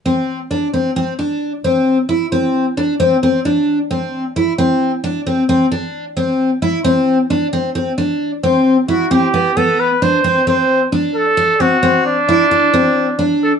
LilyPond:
<<
  \new Staff \with { instrumentName = "Trumpet" } { \time 5/4 \key c \lydian \tempo 4 = 132 r1 r4 | r1 r4 | r1 r4 | r1 r8 fis'8 |
g'4 a'8 b'8 c''4 c''4 r8 a'8~ | a'8 fis'4 d'2. a'8 | }
  \new Staff \with { instrumentName = "Twelve-string acoustic guitar" } { \time 5/4 \key c \lydian c'4 d'8 c'8 c'8 d'4 c'4 e'8 | c'4 d'8 c'8 c'8 d'4 c'4 e'8 | c'4 d'8 c'8 c'8 d'4 c'4 e'8 | c'4 d'8 c'8 c'8 d'4 c'4 e'8 |
c'8 b8 b4 d'8 c'8 c'4 d'4 | d'8 c'8 c'4 e'8 d'8 c'4 d'4 | }
>>